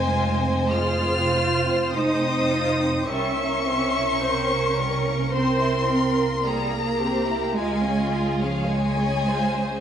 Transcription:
Already playing: double bass section F1, cello section G#3, violin section C5 G#5
0.08 violin section F4
0.41 violin section C4
0.72 violin section G#3 F6, cello section F4, viola section G#4
1.06 violin section C4
1.34 violin section F4, viola section C5
1.65 violin section C4
1.91 violin section G#3 D#6, cello section D#4
2.22 violin section C4
2.51 violin section F4
2.80 violin section C4
3.06 double bass section C2, violin section G3 A#4 C#6, cello section C#4, viola section E5
3.37 violin section A#3
3.65 violin section C4, viola section E5
3.95 violin section E4
4.22 violin section C4, viola section C5
4.52 violin section A#3
4.79 violin section G3, viola section A#4
5.07 violin section A#3
5.33 violin section C4 C6, cello section C4, viola section C5
5.61 violin section E4
5.88 violin section C4, viola section A#4
6.16 violin section A#3
6.43 violin section G3 A#5, cello section A#3, viola section G#4
6.71 violin section A#3
7.01 violin section C4, viola section G4
7.28 violin section E4
7.56 double bass section C#2, violin section G#3 G#4 G#5, cello section G#3, viola section F4
7.84 violin section C#4
8.11 violin section F4
8.40 cello section F3, violin section C#4 F5
8.67 violin section G#3 G#5, cello section G#3, viola section C#5
8.96 violin section C#4
9.28 violin section F4, viola section C5
9.59 violin section C#4

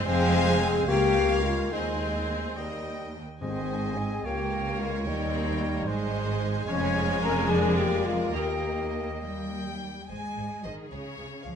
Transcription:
0.05 double bass section F1, cello section F2, clarinet F3, bassoon G#3, viola section G#3, french horn section C4, violin section C5 F5 G#5, flute C5, oboe C5
0.61 clarinet C4, french horn section G#4, flute G#5
0.87 double bass section C#2, cello section C#2, clarinet A#3, bassoon A#3, viola section A#3, french horn section G4, violin section A#4 F5, oboe C#5, flute G5
1.44 clarinet G#3, french horn section F4, flute F5
1.72 double bass section D#2, cello section D#2, clarinet G#3, bassoon G#3, viola section C4, french horn section D#4, violin section C5 D#5 G#5, oboe C5, flute D#5
2.57 double bass section D#2, cello section D#2, bassoon G3, violin section A#4 D#5 G5, oboe D#5
3.41 double bass section G#1, timpani G#2, cello section G#2, clarinet D#3, bassoon G#3, french horn section C4, flute C5, violin section C5 D#5 G#5, oboe D#5
3.96 clarinet C4, french horn section G#4, flute G#5
4.24 double bass section C#2, cello section C#2, clarinet A#3, bassoon A#3, viola section A#3, french horn section G4, violin section A#4 C#5 F5, oboe C#5, flute G5
4.80 clarinet G#3, french horn section F4, flute F5
5.06 double bass section D#2, cello section D#2, viola section G3, bassoon G3, clarinet G3, french horn section D#4, flute D#5, violin section G5
5.34 viola section C4
5.60 viola section A#3
5.87 double bass section G#1, cello section G#2, viola section G#3, bassoon G#3, oboe C5, violin section C5 D#5 G#5
6.68 double bass section F1, cello section F2, clarinet F3, viola section G#3, french horn section C#4, oboe C#5, violin section C#5 F5, flute C#5
7.22 clarinet C#4, french horn section A#4, flute A#5
7.49 bassoon A#3, clarinet D4, french horn section G#4, violin section A#4 D5, oboe D5, flute G#5
7.77 clarinet A#3, french horn section G4, flute G5
8.05 clarinet G#3, french horn section F4, flute F5
8.34 double bass section D#2, cello section D#2, viola section A#3, clarinet A#3, french horn section G4, violin section D#5, oboe D#5, flute G5
9.23 french horn section G3, cello section G3, violin section G5
10.09 double bass section G#1, french horn section G#3, cello section G#3, viola section G#4, violin section C5 G#5
10.37 double bass section G#1, violin section C5
10.64 double bass section G#1, french horn section D#3, cello section D#3, violin section C5 D#5
10.90 double bass section C#2, french horn section C#3, cello section C#3, violin section C#5
11.18 double bass section C#2, violin section C#5
11.44 double bass section C#2, french horn section F3, cello section F3, violin section C#5 F5

